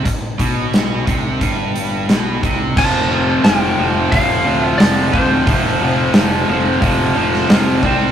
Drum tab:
CC |----------------|x---------------|----------------|
HH |x-x-x-x-x-x-x-x-|----o---o---o---|o---o---o---o---|
SD |----o-------o---|----o-------o---|----o------oo---|
BD |o-o---o-o-----o-|o-------o-----o-|o-------o-----o-|